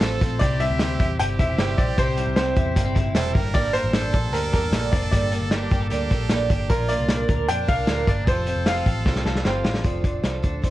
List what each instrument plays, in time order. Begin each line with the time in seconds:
Already playing: clean electric guitar F3 C4 F4, trumpet A4
0.01 picked electric bass A1, twelve-string acoustic guitar F3 C4 F4 A4, clean electric guitar A3, snare, closed hi-hat
0.21 picked electric bass A#1, twelve-string acoustic guitar C4 F4 A4, kick, closed hi-hat
0.39 picked electric bass C2, twelve-string acoustic guitar C3 G3 C4 E4, trumpet G4, upright piano D5, kick, closed hi-hat
0.44 twelve-string acoustic guitar G4
0.60 clean electric guitar G3, twelve-string acoustic guitar C4 E4 G4, upright piano E5, closed hi-hat
0.71 picked electric bass D2
0.79 twelve-string acoustic guitar C3 G3 C4 E4 G4, snare, closed hi-hat
1.00 picked electric bass E2, twelve-string acoustic guitar C4 E4 G4, kick, closed hi-hat
1.19 picked electric bass G1, twelve-string acoustic guitar G3 C4 E4 G4, trumpet G4, upright piano G5, closed hi-hat
1.39 picked electric bass E1, twelve-string acoustic guitar C4 E4 G4, upright piano E5, kick, snare, closed hi-hat
1.58 picked electric bass G1, twelve-string acoustic guitar C3 G3 C4 E4 G4, snare, closed hi-hat
1.78 picked electric bass A#1, twelve-string acoustic guitar C4 E4 G4, upright piano D5, kick, closed hi-hat
1.98 picked electric bass C2, twelve-string acoustic guitar C3 G3 C4 E4 G4, upright piano C5, kick, closed hi-hat
2.17 clean electric guitar G3, twelve-string acoustic guitar C4 E4 G4, closed hi-hat
2.27 picked electric bass C2
2.36 twelve-string acoustic guitar C3 G3 C4 E4 G4, upright piano C5, snare, closed hi-hat
2.56 picked electric bass E2, twelve-string acoustic guitar C4 E4 G4, kick, closed hi-hat
2.76 picked electric bass G1, twelve-string acoustic guitar G3 C4 E4, clean electric guitar A#3, kick, closed hi-hat
2.80 twelve-string acoustic guitar G4
2.85 clean electric guitar C4
2.95 picked electric bass G1, twelve-string acoustic guitar C4 E4 G4, kick, snare, closed hi-hat
3.15 picked electric bass E1, twelve-string acoustic guitar C3 G3 C4 E4 G4, trumpet A4, snare, closed hi-hat
3.33 picked electric bass G1, clean electric guitar G2, twelve-string acoustic guitar G3 A#3 D4 A4, trumpet A#4, kick, open hi-hat
3.53 twelve-string acoustic guitar G2 D3 G3 A#3 D4 A4, upright piano D5, kick, closed hi-hat
3.73 twelve-string acoustic guitar G3 A#3 D4 A4, upright piano C5, closed hi-hat
3.84 picked electric bass A1
3.93 twelve-string acoustic guitar G2 D3 G3 A#3 D4 A4, trumpet A4, snare, closed hi-hat
4.13 picked electric bass A#1, twelve-string acoustic guitar G3 A#3 D4 A4, kick, closed hi-hat
4.33 picked electric bass D2, twelve-string acoustic guitar G3 A#3 D4 A4, clean electric guitar C4, upright piano A#4, closed hi-hat
4.43 clean electric guitar D4
4.53 picked electric bass E2, twelve-string acoustic guitar G3 A#3 D4 A4, clean electric guitar G4, upright piano A#4, kick, snare, closed hi-hat
4.63 clean electric guitar A4
4.72 picked electric bass A#1, twelve-string acoustic guitar G2 D3 G3 A#3 D4 A4, snare, closed hi-hat
4.92 picked electric bass F1, twelve-string acoustic guitar G3 A#3 D4 A4, clean electric guitar C4, upright piano D5, kick, closed hi-hat
5.03 clean electric guitar D4
5.11 picked electric bass G1, twelve-string acoustic guitar G2 D3 G3 A#3 D4 A4, upright piano D5, kick, closed hi-hat
5.31 twelve-string acoustic guitar G3 A#3 D4 A4, closed hi-hat
5.41 picked electric bass G1
5.51 twelve-string acoustic guitar G2 D3 G3 A#3 D4 A4, trumpet G4, snare, closed hi-hat
5.71 picked electric bass G1, twelve-string acoustic guitar G3 A#3 D4 A4, clean electric guitar G4, kick, closed hi-hat
5.82 clean electric guitar A4
5.90 picked electric bass D2, twelve-string acoustic guitar G3 A#3 D4 A4, trumpet G4, closed hi-hat
6.10 picked electric bass A#1, twelve-string acoustic guitar G3 A#3 D4 A4, kick, closed hi-hat
6.29 picked electric bass A#1, twelve-string acoustic guitar G2 D3 G3 A#3 D4 A4, snare, closed hi-hat
6.49 picked electric bass G1, twelve-string acoustic guitar G3 A#3 D4 A4, kick, closed hi-hat
6.69 picked electric bass A#1, twelve-string acoustic guitar A#2 D3 F3 A#3 D4 A#4, trumpet F4, upright piano A#4, kick, closed hi-hat
6.89 twelve-string acoustic guitar F3 A#3 D4 A#4, upright piano D5, closed hi-hat
6.99 picked electric bass C2
7.09 twelve-string acoustic guitar A#2 D3 F3 A#3 D4 A#4, snare, closed hi-hat
7.28 picked electric bass D2, twelve-string acoustic guitar F3 A#3 D4 A#4, kick, closed hi-hat
7.48 picked electric bass F2, twelve-string acoustic guitar F3 A#3 D4 A#4, trumpet D4, upright piano G5, closed hi-hat
7.68 picked electric bass C2, twelve-string acoustic guitar F3 A#3 D4 A#4, upright piano F5, kick, snare, closed hi-hat
7.87 picked electric bass D2, twelve-string acoustic guitar A#2 D3 F3 A#3 D4 A#4, snare, closed hi-hat
8.07 picked electric bass G1, twelve-string acoustic guitar F3 A#3 A#4, clean electric guitar D4, upright piano D5, kick, closed hi-hat
8.26 picked electric bass F1, twelve-string acoustic guitar F3 A3 C4 F4, trumpet A4, upright piano C5, kick, closed hi-hat
8.30 twelve-string acoustic guitar G4
8.46 twelve-string acoustic guitar C4 F4 G4, closed hi-hat
8.56 picked electric bass F1
8.66 twelve-string acoustic guitar F3 A3 C4 F4 G4, upright piano F5, snare, closed hi-hat
8.86 picked electric bass A1, twelve-string acoustic guitar C4 F4 G4, clean electric guitar A4, kick, closed hi-hat
9.05 picked electric bass C2, twelve-string acoustic guitar A3 C4 F4 G4, kick, snare
9.16 snare
9.25 picked electric bass C2, twelve-string acoustic guitar C4 F4 G4, clean electric guitar A4, snare
9.35 snare
9.44 picked electric bass G1, twelve-string acoustic guitar F3 A3 C4 F4 G4, trumpet F4, snare
9.64 picked electric bass A1, twelve-string acoustic guitar C4 F4 G4, snare
9.74 snare
9.84 picked electric bass F1, twelve-string acoustic guitar F3 A3 C4 D4 A4, kick, closed hi-hat
10.04 twelve-string acoustic guitar C4 D4 A4, kick, closed hi-hat
10.23 picked electric bass C2, twelve-string acoustic guitar F3 A3 C4 D4 A4, clean electric guitar C5, snare, closed hi-hat
10.42 picked electric bass D2, twelve-string acoustic guitar C4 D4 A4, kick, closed hi-hat
10.62 picked electric bass F2, twelve-string acoustic guitar A3 C4 D4 A4, clean electric guitar C5, kick, closed hi-hat